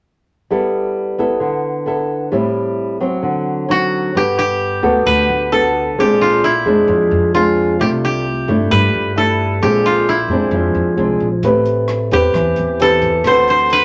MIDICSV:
0, 0, Header, 1, 5, 480
1, 0, Start_track
1, 0, Key_signature, 1, "major"
1, 0, Tempo, 455235
1, 535, Time_signature, 4, 2, 24, 8
1, 14600, End_track
2, 0, Start_track
2, 0, Title_t, "Koto"
2, 0, Program_c, 0, 107
2, 3912, Note_on_c, 0, 66, 81
2, 4397, Note_on_c, 0, 67, 84
2, 4460, Note_off_c, 0, 66, 0
2, 4621, Note_off_c, 0, 67, 0
2, 4625, Note_on_c, 0, 67, 85
2, 5341, Note_on_c, 0, 71, 91
2, 5823, Note_on_c, 0, 69, 79
2, 6322, Note_off_c, 0, 67, 0
2, 6326, Note_on_c, 0, 67, 74
2, 6552, Note_on_c, 0, 65, 67
2, 6791, Note_on_c, 0, 64, 70
2, 6855, Note_off_c, 0, 65, 0
2, 7213, Note_off_c, 0, 71, 0
2, 7745, Note_on_c, 0, 65, 72
2, 7808, Note_off_c, 0, 64, 0
2, 7830, Note_off_c, 0, 69, 0
2, 8229, Note_off_c, 0, 67, 0
2, 8233, Note_on_c, 0, 67, 78
2, 8297, Note_off_c, 0, 67, 0
2, 8484, Note_on_c, 0, 67, 76
2, 9186, Note_on_c, 0, 71, 86
2, 9675, Note_on_c, 0, 69, 76
2, 10050, Note_off_c, 0, 65, 0
2, 10145, Note_off_c, 0, 67, 0
2, 10149, Note_on_c, 0, 67, 73
2, 10394, Note_on_c, 0, 65, 68
2, 10637, Note_on_c, 0, 64, 67
2, 10700, Note_off_c, 0, 65, 0
2, 11059, Note_off_c, 0, 71, 0
2, 11682, Note_off_c, 0, 69, 0
2, 12300, Note_off_c, 0, 67, 0
2, 12793, Note_on_c, 0, 67, 86
2, 13024, Note_off_c, 0, 64, 0
2, 13515, Note_on_c, 0, 69, 81
2, 13993, Note_on_c, 0, 72, 89
2, 14231, Note_off_c, 0, 72, 0
2, 14235, Note_on_c, 0, 72, 80
2, 14473, Note_on_c, 0, 71, 93
2, 14536, Note_off_c, 0, 72, 0
2, 14600, Note_off_c, 0, 67, 0
2, 14600, Note_off_c, 0, 69, 0
2, 14600, Note_off_c, 0, 71, 0
2, 14600, End_track
3, 0, Start_track
3, 0, Title_t, "Nylon-string guitar"
3, 0, Program_c, 1, 24
3, 532, Note_on_c, 1, 55, 58
3, 536, Note_on_c, 1, 59, 40
3, 538, Note_on_c, 1, 64, 48
3, 543, Note_on_c, 1, 69, 50
3, 1215, Note_off_c, 1, 59, 0
3, 1218, Note_off_c, 1, 64, 0
3, 1221, Note_off_c, 1, 69, 0
3, 1248, Note_on_c, 1, 59, 51
3, 1254, Note_on_c, 1, 64, 47
3, 1262, Note_on_c, 1, 69, 54
3, 1471, Note_off_c, 1, 55, 0
3, 1474, Note_on_c, 1, 50, 60
3, 1934, Note_off_c, 1, 59, 0
3, 1935, Note_off_c, 1, 64, 0
3, 1941, Note_off_c, 1, 69, 0
3, 1960, Note_on_c, 1, 59, 47
3, 1969, Note_on_c, 1, 64, 45
3, 1977, Note_on_c, 1, 69, 53
3, 2410, Note_off_c, 1, 59, 0
3, 2414, Note_off_c, 1, 64, 0
3, 2418, Note_off_c, 1, 69, 0
3, 2422, Note_off_c, 1, 50, 0
3, 2443, Note_on_c, 1, 45, 59
3, 2443, Note_on_c, 1, 55, 52
3, 2449, Note_on_c, 1, 60, 49
3, 2456, Note_on_c, 1, 64, 58
3, 3131, Note_off_c, 1, 55, 0
3, 3135, Note_off_c, 1, 60, 0
3, 3138, Note_off_c, 1, 64, 0
3, 3168, Note_on_c, 1, 54, 53
3, 3175, Note_on_c, 1, 60, 54
3, 3387, Note_off_c, 1, 45, 0
3, 3400, Note_on_c, 1, 50, 56
3, 3855, Note_off_c, 1, 54, 0
3, 3856, Note_off_c, 1, 60, 0
3, 3884, Note_on_c, 1, 54, 51
3, 3888, Note_on_c, 1, 60, 53
3, 3894, Note_on_c, 1, 63, 50
3, 4333, Note_off_c, 1, 54, 0
3, 4335, Note_off_c, 1, 60, 0
3, 4337, Note_off_c, 1, 63, 0
3, 4345, Note_off_c, 1, 50, 0
3, 4375, Note_on_c, 1, 55, 46
3, 4379, Note_on_c, 1, 59, 46
3, 4390, Note_on_c, 1, 69, 44
3, 5059, Note_off_c, 1, 59, 0
3, 5066, Note_off_c, 1, 69, 0
3, 5089, Note_on_c, 1, 59, 61
3, 5093, Note_on_c, 1, 66, 51
3, 5100, Note_on_c, 1, 69, 61
3, 5313, Note_off_c, 1, 55, 0
3, 5337, Note_on_c, 1, 50, 51
3, 5776, Note_off_c, 1, 59, 0
3, 5778, Note_off_c, 1, 66, 0
3, 5780, Note_off_c, 1, 69, 0
3, 5823, Note_on_c, 1, 59, 48
3, 5828, Note_on_c, 1, 66, 48
3, 5829, Note_on_c, 1, 69, 58
3, 6131, Note_off_c, 1, 59, 0
3, 6131, Note_off_c, 1, 66, 0
3, 6133, Note_off_c, 1, 69, 0
3, 6274, Note_off_c, 1, 50, 0
3, 6306, Note_on_c, 1, 46, 48
3, 6312, Note_on_c, 1, 56, 53
3, 6313, Note_on_c, 1, 60, 52
3, 6317, Note_on_c, 1, 62, 49
3, 6782, Note_off_c, 1, 60, 0
3, 6783, Note_off_c, 1, 56, 0
3, 6785, Note_off_c, 1, 62, 0
3, 7018, Note_on_c, 1, 56, 57
3, 7025, Note_on_c, 1, 60, 50
3, 7031, Note_on_c, 1, 62, 57
3, 7240, Note_off_c, 1, 46, 0
3, 7257, Note_on_c, 1, 53, 53
3, 7701, Note_off_c, 1, 56, 0
3, 7704, Note_off_c, 1, 60, 0
3, 7707, Note_off_c, 1, 62, 0
3, 7745, Note_on_c, 1, 56, 46
3, 7747, Note_on_c, 1, 60, 49
3, 7749, Note_on_c, 1, 62, 58
3, 8184, Note_off_c, 1, 56, 0
3, 8185, Note_off_c, 1, 60, 0
3, 8186, Note_off_c, 1, 62, 0
3, 8194, Note_off_c, 1, 53, 0
3, 8218, Note_on_c, 1, 48, 50
3, 8223, Note_on_c, 1, 57, 46
3, 8229, Note_on_c, 1, 62, 47
3, 8230, Note_on_c, 1, 64, 51
3, 8697, Note_off_c, 1, 57, 0
3, 8701, Note_off_c, 1, 64, 0
3, 8702, Note_off_c, 1, 62, 0
3, 8945, Note_on_c, 1, 57, 59
3, 8953, Note_on_c, 1, 62, 57
3, 8959, Note_on_c, 1, 64, 58
3, 9155, Note_off_c, 1, 48, 0
3, 9185, Note_on_c, 1, 55, 52
3, 9624, Note_off_c, 1, 57, 0
3, 9628, Note_off_c, 1, 62, 0
3, 9631, Note_off_c, 1, 64, 0
3, 9658, Note_on_c, 1, 57, 54
3, 9669, Note_on_c, 1, 62, 46
3, 9671, Note_on_c, 1, 64, 54
3, 10100, Note_off_c, 1, 57, 0
3, 10106, Note_off_c, 1, 62, 0
3, 10106, Note_off_c, 1, 64, 0
3, 10118, Note_off_c, 1, 55, 0
3, 10150, Note_on_c, 1, 56, 52
3, 10151, Note_on_c, 1, 46, 50
3, 10152, Note_on_c, 1, 60, 45
3, 10155, Note_on_c, 1, 62, 50
3, 10621, Note_off_c, 1, 56, 0
3, 10622, Note_off_c, 1, 60, 0
3, 10624, Note_off_c, 1, 62, 0
3, 10860, Note_on_c, 1, 56, 52
3, 10868, Note_on_c, 1, 60, 61
3, 10871, Note_on_c, 1, 62, 57
3, 11081, Note_off_c, 1, 46, 0
3, 11114, Note_on_c, 1, 53, 50
3, 11540, Note_off_c, 1, 56, 0
3, 11545, Note_off_c, 1, 60, 0
3, 11545, Note_off_c, 1, 62, 0
3, 11570, Note_on_c, 1, 56, 45
3, 11575, Note_on_c, 1, 60, 51
3, 11581, Note_on_c, 1, 62, 51
3, 11883, Note_off_c, 1, 56, 0
3, 11886, Note_off_c, 1, 60, 0
3, 11888, Note_off_c, 1, 62, 0
3, 12042, Note_off_c, 1, 53, 0
3, 12060, Note_on_c, 1, 57, 51
3, 12066, Note_on_c, 1, 60, 51
3, 12068, Note_on_c, 1, 71, 55
3, 12071, Note_on_c, 1, 67, 57
3, 12741, Note_off_c, 1, 60, 0
3, 12742, Note_off_c, 1, 67, 0
3, 12743, Note_off_c, 1, 71, 0
3, 12775, Note_on_c, 1, 60, 51
3, 12781, Note_on_c, 1, 67, 54
3, 12788, Note_on_c, 1, 71, 55
3, 12995, Note_off_c, 1, 57, 0
3, 13020, Note_on_c, 1, 52, 50
3, 13456, Note_off_c, 1, 60, 0
3, 13460, Note_off_c, 1, 67, 0
3, 13463, Note_off_c, 1, 71, 0
3, 13500, Note_on_c, 1, 60, 59
3, 13508, Note_on_c, 1, 67, 58
3, 13514, Note_on_c, 1, 71, 53
3, 13807, Note_off_c, 1, 60, 0
3, 13810, Note_off_c, 1, 67, 0
3, 13814, Note_off_c, 1, 71, 0
3, 13953, Note_off_c, 1, 52, 0
3, 13987, Note_on_c, 1, 50, 43
3, 13991, Note_on_c, 1, 60, 50
3, 13994, Note_on_c, 1, 66, 45
3, 13995, Note_on_c, 1, 71, 60
3, 14600, Note_off_c, 1, 50, 0
3, 14600, Note_off_c, 1, 60, 0
3, 14600, Note_off_c, 1, 66, 0
3, 14600, Note_off_c, 1, 71, 0
3, 14600, End_track
4, 0, Start_track
4, 0, Title_t, "Upright bass"
4, 0, Program_c, 2, 32
4, 4374, Note_on_c, 2, 31, 72
4, 5054, Note_off_c, 2, 31, 0
4, 5090, Note_on_c, 2, 38, 83
4, 5317, Note_off_c, 2, 38, 0
4, 5331, Note_on_c, 2, 38, 89
4, 5558, Note_off_c, 2, 38, 0
4, 5575, Note_on_c, 2, 38, 77
4, 6289, Note_off_c, 2, 38, 0
4, 6289, Note_on_c, 2, 34, 80
4, 6972, Note_off_c, 2, 34, 0
4, 7007, Note_on_c, 2, 41, 78
4, 7236, Note_off_c, 2, 41, 0
4, 7250, Note_on_c, 2, 41, 91
4, 7478, Note_off_c, 2, 41, 0
4, 7499, Note_on_c, 2, 41, 91
4, 8217, Note_on_c, 2, 36, 72
4, 8233, Note_off_c, 2, 41, 0
4, 8896, Note_off_c, 2, 36, 0
4, 8940, Note_on_c, 2, 43, 86
4, 9163, Note_off_c, 2, 43, 0
4, 9186, Note_on_c, 2, 43, 96
4, 9406, Note_off_c, 2, 43, 0
4, 9424, Note_on_c, 2, 43, 76
4, 10139, Note_on_c, 2, 34, 82
4, 10155, Note_off_c, 2, 43, 0
4, 10816, Note_off_c, 2, 34, 0
4, 10839, Note_on_c, 2, 41, 81
4, 11071, Note_off_c, 2, 41, 0
4, 11082, Note_on_c, 2, 41, 97
4, 11313, Note_off_c, 2, 41, 0
4, 11330, Note_on_c, 2, 41, 83
4, 11565, Note_off_c, 2, 41, 0
4, 11571, Note_on_c, 2, 36, 78
4, 11790, Note_off_c, 2, 36, 0
4, 11811, Note_on_c, 2, 34, 77
4, 12047, Note_off_c, 2, 34, 0
4, 12047, Note_on_c, 2, 33, 76
4, 12729, Note_off_c, 2, 33, 0
4, 12780, Note_on_c, 2, 40, 84
4, 13001, Note_off_c, 2, 40, 0
4, 13009, Note_on_c, 2, 40, 88
4, 13235, Note_off_c, 2, 40, 0
4, 13264, Note_on_c, 2, 40, 77
4, 13965, Note_off_c, 2, 40, 0
4, 13965, Note_on_c, 2, 38, 80
4, 14600, Note_off_c, 2, 38, 0
4, 14600, End_track
5, 0, Start_track
5, 0, Title_t, "Drums"
5, 12049, Note_on_c, 9, 36, 55
5, 12051, Note_on_c, 9, 42, 52
5, 12155, Note_off_c, 9, 36, 0
5, 12156, Note_off_c, 9, 42, 0
5, 12289, Note_on_c, 9, 42, 37
5, 12394, Note_off_c, 9, 42, 0
5, 12525, Note_on_c, 9, 37, 55
5, 12525, Note_on_c, 9, 42, 37
5, 12630, Note_off_c, 9, 37, 0
5, 12630, Note_off_c, 9, 42, 0
5, 12773, Note_on_c, 9, 42, 37
5, 12879, Note_off_c, 9, 42, 0
5, 13009, Note_on_c, 9, 36, 61
5, 13012, Note_on_c, 9, 37, 54
5, 13012, Note_on_c, 9, 42, 51
5, 13115, Note_off_c, 9, 36, 0
5, 13118, Note_off_c, 9, 37, 0
5, 13118, Note_off_c, 9, 42, 0
5, 13244, Note_on_c, 9, 42, 39
5, 13349, Note_off_c, 9, 42, 0
5, 13493, Note_on_c, 9, 42, 41
5, 13598, Note_off_c, 9, 42, 0
5, 13725, Note_on_c, 9, 42, 37
5, 13727, Note_on_c, 9, 36, 51
5, 13831, Note_off_c, 9, 42, 0
5, 13832, Note_off_c, 9, 36, 0
5, 13963, Note_on_c, 9, 37, 56
5, 13963, Note_on_c, 9, 42, 57
5, 13966, Note_on_c, 9, 36, 58
5, 14069, Note_off_c, 9, 37, 0
5, 14069, Note_off_c, 9, 42, 0
5, 14072, Note_off_c, 9, 36, 0
5, 14209, Note_on_c, 9, 42, 42
5, 14314, Note_off_c, 9, 42, 0
5, 14445, Note_on_c, 9, 42, 46
5, 14550, Note_off_c, 9, 42, 0
5, 14600, End_track
0, 0, End_of_file